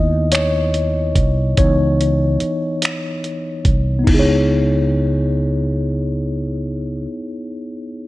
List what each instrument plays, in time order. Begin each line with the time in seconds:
Already playing: fretless electric bass D#2, tine electric piano B3 D#4 E4 D#5
0.32 tine electric piano C#5, finger snap, closed hi-hat
0.74 closed hi-hat
1.15 fretless electric bass C2, kick, closed hi-hat
1.57 fretless electric bass C#2, tine electric piano E3 B3 D#4 C#5, kick, closed hi-hat
2.01 closed hi-hat
2.40 muted fretless electric bass stroke, closed hi-hat
2.82 finger snap, closed hi-hat
3.24 closed hi-hat
3.65 fretless electric bass C2, kick, closed hi-hat
3.99 tine electric piano B3
4.04 fretless electric bass C#2, tine electric piano D#4, kick, crash
4.09 tine electric piano E4
4.14 tine electric piano G#4
4.19 tine electric piano C#5